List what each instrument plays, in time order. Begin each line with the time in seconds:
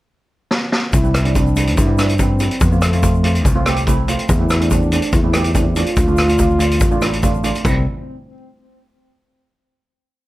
0.51 snare
0.72 snare
0.93 fingered electric bass C2, french horn E4, kick, closed hi-hat, shaker
1.03 steel pan G3 C4 E4, shaker
1.14 cross-stick, closed hi-hat, shaker
1.24 steel pan G3 C4 D4, closed hi-hat
1.35 steel pan G3 C4 E4, french horn D4, kick, closed hi-hat, shaker
1.47 shaker
1.56 steel pan G3 C4 E4, closed hi-hat, shaker
1.67 closed hi-hat
1.77 fingered electric bass G2, french horn E4, kick, closed hi-hat, shaker
1.87 steel pan G3 C4 E4
1.97 steel pan G3 C4 D4, cross-stick, closed hi-hat, shaker
2.08 closed hi-hat, shaker
2.18 steel pan G3 C4 E4, french horn C4, kick, closed hi-hat, shaker
2.39 steel pan G3 C4 E4, closed hi-hat, shaker
2.51 closed hi-hat
2.60 fingered electric bass F2, french horn B3, kick, closed hi-hat, shaker
2.72 steel pan A3 C4 F4, shaker
2.81 french horn A3, cross-stick, closed hi-hat, shaker
2.93 steel pan A3 C4 F4, closed hi-hat
3.02 steel pan A3 C4 F4, kick, closed hi-hat, shaker
3.14 shaker
3.23 steel pan A3 C4 F4, closed hi-hat
3.35 closed hi-hat, shaker
3.45 fingered electric bass C2, kick, closed hi-hat, shaker
3.55 steel pan A3 C4 F4
3.66 steel pan A3 C4 G4, cross-stick, closed hi-hat, shaker
3.76 closed hi-hat, shaker
3.87 steel pan A3 C4 E4, kick, closed hi-hat, shaker
4.08 steel pan A3 C4 F4, closed hi-hat, shaker
4.19 closed hi-hat
4.29 fingered electric bass E2, french horn E4, kick, closed hi-hat, shaker
4.40 steel pan A3 C4 E4
4.49 cross-stick, closed hi-hat, shaker
4.60 steel pan A3 C4 D4, closed hi-hat
4.70 steel pan A3 C4 D4, french horn D4, kick, closed hi-hat, shaker
4.92 steel pan A3 C4 D4, closed hi-hat, shaker
5.02 closed hi-hat, shaker
5.12 fingered electric bass E2, french horn E4, kick, closed hi-hat, shaker
5.23 steel pan A3 C4 E4, french horn E4
5.29 french horn E4
5.33 steel pan A3 C4 G4, french horn E4, cross-stick, closed hi-hat, shaker
5.44 french horn E4, closed hi-hat, shaker
5.52 steel pan A3 C4 D4, french horn E4, kick, closed hi-hat, shaker
5.59 french horn E4
5.67 french horn E4
5.76 steel pan A3 C4 D4, french horn F4, closed hi-hat, shaker
5.86 closed hi-hat
5.96 fingered electric bass D2, kick, closed hi-hat, shaker
6.07 steel pan A3 D4 F4, shaker
6.17 cross-stick, closed hi-hat, shaker
6.27 steel pan A3 D4 F4, closed hi-hat, shaker
6.38 steel pan A3 D4 F4, kick, closed hi-hat, shaker
6.50 shaker
6.59 steel pan A3 D4 F4, closed hi-hat, shaker
6.71 closed hi-hat, shaker
6.80 fingered electric bass A1, kick, closed hi-hat, shaker
6.91 steel pan A3 D4 F4, shaker
7.01 steel pan A3 D4 E4, cross-stick, closed hi-hat, shaker
7.13 closed hi-hat, shaker
7.23 steel pan A3 D4 F4, kick, closed hi-hat, shaker
7.34 shaker
7.44 steel pan A3 D4 F4, closed hi-hat, shaker
7.55 closed hi-hat, shaker
7.65 fingered electric bass C2, steel pan G3 C4 E4, french horn C4, kick, crash, shaker